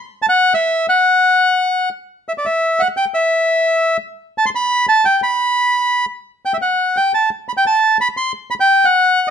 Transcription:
\new Staff \with { instrumentName = "Bandoneon" } { \time 3/4 \key e \minor \tempo 4 = 174 r8 a''16 fis''8. e''4 fis''8~ | fis''2~ fis''8 r8 | r8 e''16 d''16 e''4 fis''8 g''8 | e''2~ e''8 r8 |
r8 a''16 c'''16 b''4 a''8 g''8 | b''2~ b''8 r8 | r8 g''16 e''16 fis''4 g''8 a''8 | r8 b''16 g''16 a''4 b''8 c'''8 |
r8 b''16 g''8. fis''4~ fis''16 r16 | }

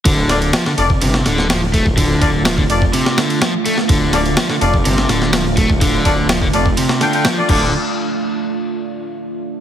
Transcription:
<<
  \new Staff \with { instrumentName = "Horn section" } { \time 4/4 \key d \minor \tempo 4 = 125 r8 <a d' f' d''>16 r8. <a d' f' d''>16 r2 r16 | r8 <a d' f' d''>16 r8. <a d' f' d''>16 r2 r16 | r8 <a d' f' d''>16 r8. <a d' f' d''>16 r2 r16 | r8 <a d' f' d''>16 r8. <a d' f' d''>16 r8. <a d' f' g''>16 <a d' f' g''>16 r16 <a d' f' d''>16 <a d' f' d''>8 |
r1 | }
  \new Staff \with { instrumentName = "Ambient pad" } { \time 4/4 \key d \minor <a d' f'>1~ | <a d' f'>1~ | <a d' f'>1~ | <a d' f'>2.~ <a d' f'>8 r8 |
r1 | }
  \new Staff \with { instrumentName = "Overdriven electric guitar" } { \clef bass \time 4/4 \key d \minor d4 f16 d16 r8 c8 d8 f16 r16 a16 r16 | d4 f16 d16 r8 c8 d8 f16 r16 a16 r16 | d4 f16 d16 r8 c8 d8 f16 r16 a16 r16 | d4 f16 d16 r8 c8 d8 f16 r16 d8 |
r1 | }
  \new Staff \with { instrumentName = "Detuned saw bass" } { \clef bass \time 4/4 \key d \minor d,,4 r8 f,,8 g,,8 d,,4.~ | d,,4. f,,8 r2 | d,,4 r8 f,,8 g,,8 d,,4.~ | d,,4. f,,8 r4. d,,8 |
r1 | }
  \new DrumStaff \with { instrumentName = "Drums" } \drummode { \time 4/4 <bd cymr>8 <cymr sn>16 cymr16 <cymr sn>16 sn16 cymr16 bd16 cymr16 sn16 <cymr sn>16 sn16 <cymr sn>8 <bd cymr>16 bd16 | <bd cymr>8 <bd cymr>8 <cymr sn>16 bd16 cymr16 bd16 cymr16 sn16 <cymr sn>16 cymr16 <cymr sn>8 cymr16 sn16 | <bd cymr>8 <cymr sn>16 cymr16 <cymr sn>16 sn16 cymr16 bd16 cymr16 sn16 <cymr sn>16 sn16 <cymr sn>8 <bd cymr>16 bd16 | <bd cymr>8 <bd cymr>8 <cymr sn>16 bd16 cymr16 bd16 cymr16 sn16 <cymr sn>16 cymr16 <cymr sn>8 <cymc bd>8 |
r4 r4 r4 r4 | }
>>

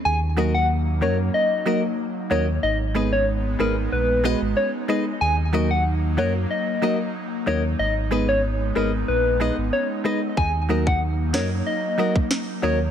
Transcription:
<<
  \new Staff \with { instrumentName = "Soft synth lead" } { \time 4/4 \key ees \minor \tempo 4 = 93 aes''16 r8 ges''16 r8 des''16 r16 ees''8. r8. des''16 r16 | ees''16 r8 des''16 r8 bes'16 r16 ces''8. r16 des''16 r16 ees''16 r16 | aes''16 r8 ges''16 r8 des''16 r16 ees''8. r8. des''16 r16 | ees''16 r8 des''16 r8 bes'16 r16 ces''8. r16 des''16 r16 ees''16 r16 |
aes''16 r8 ges''16 r8 des''16 r16 ees''8. r8. des''16 r16 | }
  \new Staff \with { instrumentName = "Nylon-string guitar" } { \time 4/4 \key ees \minor r8 <ges' bes' ees''>8 r8 <ges' bes' ees''>8 r8 <ges' bes' ees''>8 r8 <ges' bes' ees''>8 | r8 <aes' ces'' ees''>8 r8 <aes' ces'' ees''>8 r8 <aes' ces'' ees''>8 r8 <aes' ces'' ees''>8 | r8 <ges' bes' ees''>8 r8 <ges' bes' ees''>8 r8 <ges' bes' ees''>8 r8 <ges' bes' ees''>8 | r8 <aes' ces'' ees''>8 r8 <aes' ces'' ees''>8 r8 <aes' ces'' ees''>8 r8 <aes' ces'' ees''>8 |
r8 <ges' bes' ees''>8 r8 <ges' bes' ees''>8 r8 <ges' bes' ees''>8 r8 <ges' bes' ees''>8 | }
  \new Staff \with { instrumentName = "Analog synth pad" } { \time 4/4 \key ees \minor << { ees'1~ | ees'1~ | ees'1~ | ees'1~ |
ees'1 | } \\ { <ges bes>1 | <aes ces'>1 | <ges bes>1 | <aes ces'>1 |
<ges bes>1 | } >> }
  \new Staff \with { instrumentName = "Synth pluck" } { \time 4/4 \key ees \minor r8 <ges bes ees'>8 r8 <ges bes des'>8 r8 <ges bes ees'>8 r8 <ges bes ees'>8 | r8 <aes ces' ees'>8 r8 <aes ces' ees'>8 r8 <aes ces' ges'>8 r8 <aes ces' ees'>8 | r8 <ges bes ees'>8 r8 <ges bes ges'>8 r8 <ges bes ees'>8 r8 <ges bes ees'>8 | r8 <aes ces' ees'>8 r8 <aes ces' ees'>8 r8 <aes ces' ees'>8 r8 <aes ces' ees'>8 |
r8 <ges bes ees'>8 r8 <ges bes ees'>8 r8 <ges bes ees'>8 r8 <ges bes ees'>8 | }
  \new Staff \with { instrumentName = "Sub bass" } { \clef bass \time 4/4 \key ees \minor ees,4. ges,8 r4. ees,8 | aes,,4. aes,,8 bes,,8. aes,,16 r4 | ees,4. ges,8 r4. ees,8 | aes,,4. aes,,8 bes,,8. aes,,16 r4 |
ees,4. ges,8 r4. ees,8 | }
  \new DrumStaff \with { instrumentName = "Drums" } \drummode { \time 4/4 r4 r4 r4 r4 | r4 r4 r4 r4 | r4 r4 r4 r4 | r4 r4 r4 r4 |
bd8. bd16 r8 sn8 r8. bd16 sn4 | }
>>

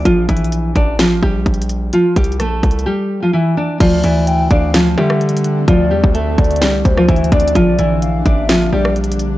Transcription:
<<
  \new Staff \with { instrumentName = "Soft synth lead" } { \time 4/4 \key d \minor \tempo 4 = 128 r1 | r1 | d''4 g''8 f''4 e''8 r4 | d''4 e''8 d''4 c''4 d''8 |
r4 f''8 e''4 d''8 r4 | }
  \new Staff \with { instrumentName = "Nylon-string guitar" } { \time 4/4 \key d \minor <f f'>8 <e e'>4 <d' d''>8 <f f'>8 <g g'>4. | <f f'>8 <g g'>8 <a a'>4 <g g'>8. <f f'>16 <e e'>8 <d' d''>8 | <f f'>8 <e e'>4 <d' d''>8 <f f'>8 <g g'>4. | <f f'>8 <g g'>8 <a a'>4 <g g'>8. <f f'>16 <e e'>8 <d' d''>8 |
<f f'>8 <e e'>4 <d' d''>8 <f f'>8 <g g'>4. | }
  \new Staff \with { instrumentName = "Ambient pad" } { \time 4/4 \key d \minor r1 | r1 | <d a c' d'>1~ | <d a c' d'>1 |
<d bes d'>1 | }
  \new Staff \with { instrumentName = "808-style bass" } { \clef bass \time 4/4 \key d \minor bes,,8 bes,,4 a,,4 bes,,8 bes,,4 | r8 c,8 bes,,8 c,8 r2 | d,8 d,4 d,4 d4. | d,8 e,16 d,8. d,8 c,8 d,8 d,8 d,8 |
bes,,8 bes,,4 a,,4 bes,,4. | }
  \new DrumStaff \with { instrumentName = "Drums" } \drummode { \time 4/4 \tuplet 3/2 { <hh bd>16 r16 r16 <hh bd>16 hh16 hh16 } hh8 <hh bd>8 <hh sn>8 bd8 \tuplet 3/2 { <hh bd>16 hh16 hh16 hh16 r16 r16 } | \tuplet 3/2 { hh16 r16 r16 <hh bd>16 hh16 hh16 <hh ss>16 r16 r16 <hh bd>16 hh16 hh16 } r4 r4 | <cymc hh bd>8 hh8 hh8 <hh bd>8 <hh sn>8. ss16 \tuplet 3/2 { hh16 hh16 hh16 hh16 r16 r16 } | <hh bd>8. bd16 hh8 <hh bd>32 hh32 hh32 hh32 <hh sn>8 <hh bd>16 ss16 \tuplet 3/2 { <hh bd>16 hh16 hh16 <hh hho bd>16 hh16 hh16 } |
<hh bd>8 hh8 hh8 <hh bd>8 <hh sn>8. ss16 \tuplet 3/2 { hh16 hh16 hh16 hh16 r16 r16 } | }
>>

